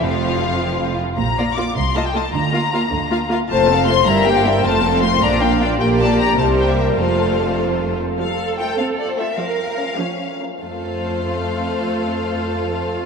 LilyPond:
<<
  \new Staff \with { instrumentName = "Violin section" } { \time 6/8 \key f \major \tempo 4. = 102 f''2~ f''8 r8 | bes''4 d'''8 c'''8 a''16 g''16 a''8 | bes''2~ bes''8 r8 | a''4 c'''8 bes''8 g''16 f''16 g''8 |
a''4 c'''8 bes''8 g''16 f''16 g''8 | g''8 a''8 bes''8 a''8 g''16 e''16 e''8 | f''4. r4. | f''4 g''8 f''8 d''16 c''16 e''8 |
f''2~ f''8 r8 | f''2.~ | f''2. | }
  \new Staff \with { instrumentName = "Violin section" } { \time 6/8 \key f \major f'2~ f'8 r8 | r8 <f' d''>8 <f' d''>8 r8 <f' ees''>8 <f' ees''>8 | r8 <f' f''>8 <f' f''>8 r8 <f' f''>8 <f' f''>8 | c''8 <a' f''>8 c''8 <bes' e''>8 <g' g''>8 <bes' e''>8 |
c''8 <a' f''>8 c''8 d''8 <bes' f''>8 d''8 | <bes' d''>4. <bes' c''>4. | <a' c''>2~ <a' c''>8 r8 | r4 <a f'>8 r4 <a f'>8 |
r4 <des' bes'>8 r4 <des' bes'>8 | <a' c''>2.~ | <a' c''>2. | }
  \new Staff \with { instrumentName = "Viola section" } { \time 6/8 \key f \major f2~ f8 r8 | r8 <bes f'>8 <bes f'>8 r8 <a f'>8 <a f'>8 | r8 <bes f'>8 <bes f'>8 r8 <bes f'>8 <bes f'>8 | <a f'>8 <c' a'>8 <a f'>8 <g e'>8 <bes g'>8 <g e'>8 |
<a f'>8 <c' a'>8 <a f'>8 <d' f'>8 <bes d'>8 <d' f'>8 | <bes g'>4. <g g'>4. | <a f'>2~ <a f'>8 r8 | f4. c'4. |
f4. f4. | <a f'>2.~ | <a f'>2. | }
  \new Staff \with { instrumentName = "Cello section" } { \clef bass \time 6/8 \key f \major f,2~ f,8 r8 | bes,4. c4. | d4. d4. | f,4. g,4. |
f,4. bes,4. | bes,4. c4. | f,2~ f,8 r8 | a'2. |
bes'4. des'8. r8. | f,2.~ | f,2. | }
  \new Staff \with { instrumentName = "Double bass section" } { \clef bass \time 6/8 \key f \major f,,2~ f,,8 r8 | bes,,4. c,4. | d,4. d,4. | f,,4. g,,4. |
f,,4. bes,,4. | bes,,4. c,4. | f,,2~ f,,8 r8 | r2. |
r2. | r2. | r2. | }
>>